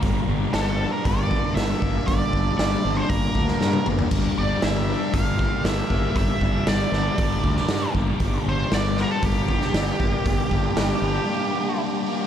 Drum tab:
CC |----------------|----------------|x---------------|----------------|
HH |o---o---o---o---|o---o---o-------|o---o---o---o---|o---o---o---o---|
SD |----o-------o---|----o------oo---|----o-------o---|----o-o----oo---|
T1 |----------------|-------------o--|----------------|----------------|
T2 |----------------|--------------o-|----------------|----------------|
FT |----------------|---------------o|----------------|----------------|
BD |o-------o-o---o-|o-o-----o-o-----|o-------o-o---o-|o-o-----o-o---o-|

CC |----------------|----------------|
HH |o---o---o---o---|o---o-----------|
SD |----o-o----oo---|----o-----------|
T1 |----------------|----------------|
T2 |----------------|----------------|
FT |----------------|----------------|
BD |o-------o-o---o-|o-o-------------|